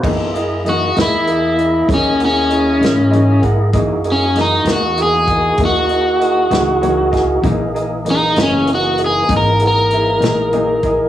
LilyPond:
<<
  \new Staff \with { instrumentName = "Upright piano" } { \time 12/8 \key fis \mixolydian \tempo 4. = 65 << { r1. | r1 r4 dis''16 fis''16 gis''8 | r1. | } \\ { <e' gis' ais' dis''>8 <e' gis' ais' dis''>8 <e' gis' ais' dis''>8 <e' gis' ais' dis''>8 <e' gis' ais' dis''>8 <e' gis' ais' dis''>8 <e' gis' ais' cis''>8 <e' gis' ais' fis''>8 <e' gis' ais' dis''>8 <e' gis' ais' dis''>8 <e' gis' ais' dis''>8 <e' gis' ais' fis''>8 | <e' gis' ais' dis''>8 <e' gis' ais' dis''>8 <e' gis' ais' dis''>8 <e' gis' ais' dis''>8 <e' gis' ais' fis''>8 <e' gis' ais' dis''>8 <e' gis' ais' e''>8 <e' gis' ais' dis''>8 <e' gis' ais' dis''>8 <e' gis' ais' dis''>8 <e' gis' ais' cis''>8 <e' gis' ais' dis''>8 | <e' gis' ais' dis''>8 <e' gis' ais' dis''>8 <e' gis' ais' dis''>8 <e' gis' ais' dis''>8 <e' gis' ais' dis''>8 <e' gis' ais' dis''>8 <e' gis' ais' dis''>8 <e' gis' ais' fis''>8 <e' gis' ais' e''>8 <e' gis' ais' dis''>8 <e' gis' ais' dis''>8 <e' gis' ais' dis''>8 | } >> }
  \new Staff \with { instrumentName = "Overdriven electric guitar" } { \time 12/8 \key fis \mixolydian r4 fis'8 e'4. cis'8 cis'2 r8 | r8 cis'8 dis'8 fis'8 gis'4 fis'2. | r4 dis'8 cis'8 fis'8 gis'8 ais'8 ais'2~ ais'8 | }
  \new Staff \with { instrumentName = "Tonewheel organ" } { \time 12/8 \key fis \mixolydian <b e' eis' a' d''>8 <ais e' gis' dis''>1~ <ais e' gis' dis''>4. | <ais dis' fis' gis'>1. | <e ais dis' gis'>1. | }
  \new Staff \with { instrumentName = "Clean electric guitar" } { \time 12/8 \key fis \mixolydian <fis, e ais dis'>8 r8 <fis, e ais dis'>8 <e ais dis'>8 r4 <fis, e ais dis'>8 r4 <e ais dis'>8 <fis, e ais dis'>8 r8 | <fis, e ais dis'>8 r8 <fis, e ais dis'>8 <e ais dis'>8 r4 <fis, e ais dis'>8 r4 <e ais dis'>8 <fis, e ais dis'>8 r8 | <fis, e ais dis'>8 r8 <fis, e ais dis'>8 <e ais dis'>8 r4 <fis, e ais dis'>8 r4 <e ais dis'>8 <fis, e ais dis'>8 r8 | }
  \new Staff \with { instrumentName = "Upright bass" } { \clef bass \time 12/8 \key fis \mixolydian fis,4. e,4. dis,4. gis,4. | fis,4. e,4. dis,4. cis,4. | ais,,4. fis,,4. gis,,4. ais,,4. | }
  \new DrumStaff \with { instrumentName = "Drums" } \drummode { \time 12/8 <cymc bd>8 hh8 hh8 <hh sn>8 hh8 hh8 <hh bd>8 hh8 hh8 <hh sn>8 hh8 <hh bd>8 | <hh bd>8 hh8 <hh sn>8 <hh sn>8 hh8 <hh bd>8 <hh bd>8 hh8 hh8 <hh sn>8 hh8 <hh bd sn>8 | <hh bd>8 hh8 hh8 <hh sn>8 hh8 hh8 <hh bd>8 hh8 hh8 <hh sn>8 hh8 <hh bd>8 | }
>>